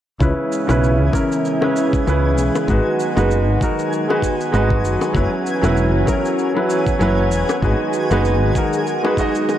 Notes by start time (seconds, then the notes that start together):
0.20 C#2 C#3 E3 G#3 B3 C#4 E4 G#4 B4 G#5, kick, shaker
0.53 shaker
0.67 B1 C#3 C#4 E4 B4, high bongo, shaker
0.84 shaker
1.00 C#2
1.12 C#3 C#4 E4 A#4, kick, high bongo, shaker
1.32 shaker
1.45 shaker
1.60 C#3 C#4 E4 B4, high bongo
1.76 shaker
1.93 kick, shaker
2.05 C#2 C#3 C#4 E4 B4, high bongo, shaker
2.38 B1, shaker
2.55 high bongo, shaker
2.67 G#1 D#3 F#3 G#3 D#4 F#4 B4, kick, shaker
3.00 shaker
3.15 F#1 G#3 D#4 F#4 B4, high bongo, shaker
3.31 shaker
3.47 G#1
3.60 G#3 D#4 F#4 A#4, kick, shaker
3.79 shaker
3.93 shaker
4.08 G#3 D#4 F#4 B4, high bongo
4.22 kick, shaker
4.41 shaker
4.52 G#1 G#3 D#4 F#4 B4, high bongo, shaker
4.70 kick
4.84 F#1, shaker
5.02 high bongo, shaker
5.13 F#1 E3 F#3 B3 C#4 E4 B4, kick, shaker
5.47 shaker
5.62 E1 F#3 C#4 E4 B4, high bongo, shaker
5.77 shaker
5.94 F#1
6.06 F#3 C#4 E4 A#4, kick, high bongo, shaker
6.25 shaker
6.39 shaker
6.54 F#3 C#4 E4 B4, high bongo
6.70 shaker
6.87 kick, shaker
6.99 F#1 F#3 C#4 E4 B4, high bongo, shaker
7.32 E1, shaker
7.49 high bongo, shaker
7.61 G#1 D#3 G#3 D#4 F#4 B4, kick, shaker
7.93 shaker
8.10 F#1 G#3 D#4 F#4 B4, high bongo, shaker
8.25 shaker
8.42 G#1
8.55 G#3 D#4 F#4 A#4, kick, shaker
8.73 shaker
8.87 shaker
9.03 G#3 D#4 F#4 B4, high bongo
9.17 G#3 D#4 F#4 D#5, kick, shaker
9.35 shaker
9.49 high bongo, shaker